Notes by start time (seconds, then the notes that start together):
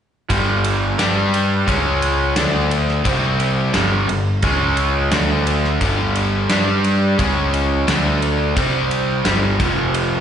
0.30 G1 G2 D3 G3, kick, ride
0.64 ride
0.98 G2 G3 D4 G4, snare, ride
1.34 ride
1.67 C#2 C#3 G#3 C#4, kick, ride
2.02 ride
2.36 D2 D3 A3 D4, snare, ride
2.71 ride
2.88 snare
3.04 C2 C3 G3 C4, kick, ride
3.40 ride
3.73 G1 G2 D3 G3, snare, ride
4.08 G1 G2 D3, ride
4.42 C#2 C#3 G#3 C#4, kick, ride
4.77 ride
5.12 D2 D3 A3 D4, snare, ride
5.47 ride
5.64 snare
5.81 G1 G2 D3 G3, kick, ride
6.16 ride
6.49 G2 G3 D4 G4, snare, ride
6.84 ride
7.18 C#2 C#3 G#3 C#4, kick, ride
7.54 ride
7.87 D2 D3 A3 D4, snare, ride
8.22 ride
8.56 C2 C3 G3 C4, kick, ride
8.91 ride
9.24 G1 G2 D3 G3, snare, ride
9.59 F1 F2 C3 F3, kick, ride
9.94 ride